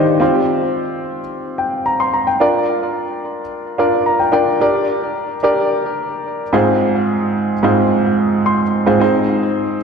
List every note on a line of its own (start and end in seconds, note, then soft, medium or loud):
0.00 0.23 D#3 medium
0.00 0.23 D4 medium
0.00 0.23 D#4 medium
0.00 0.21 G4 medium
0.00 0.21 C5 medium
0.00 0.19 D#5 medium
0.00 0.22 F5 medium
0.00 0.23 G5 medium
0.20 1.19 C4 medium
0.20 1.20 F4 medium
0.20 1.20 G4 medium
0.20 1.20 C5 medium
1.58 1.84 G5 medium
1.86 1.99 A#5 medium
2.00 2.13 C6 medium
2.14 2.27 A#5 medium
2.27 2.53 G5 medium
2.40 3.40 D4 medium
2.40 3.40 F4 medium
2.40 3.40 A#4 medium
2.40 3.40 D5 medium
3.78 4.28 D4 medium
3.78 4.28 F4 medium
3.78 4.28 A#4 medium
3.78 4.29 D5 medium
4.06 4.19 A#5 medium
4.19 4.31 G5 medium
4.32 4.57 D4 medium
4.32 4.58 F4 medium
4.32 4.58 A#4 medium
4.32 4.58 D5 medium
4.32 4.59 G5 medium
4.60 5.35 D4 medium
4.60 5.35 G4 medium
4.60 5.35 A#4 medium
4.60 5.36 D5 medium
5.43 6.42 D4 medium
5.43 6.43 G4 medium
5.43 6.43 A#4 medium
5.43 6.43 D5 medium
6.53 7.52 G#2 medium
6.53 7.52 C4 medium
6.53 7.53 F4 medium
6.53 7.53 G#4 medium
6.53 7.53 C5 medium
7.63 8.62 G#2 medium
7.63 8.63 C4 medium
7.63 8.63 F4 medium
7.63 8.63 G#4 medium
7.63 8.63 C5 medium
8.46 8.97 C6 medium
8.86 8.99 G#2 medium
8.86 8.98 C4 medium
8.86 9.00 F4 medium
8.86 8.99 G#4 medium
8.86 9.00 C5 medium
9.00 9.75 C4 medium
9.00 9.75 D#4 medium
9.00 9.75 G#4 medium
9.00 9.76 C5 medium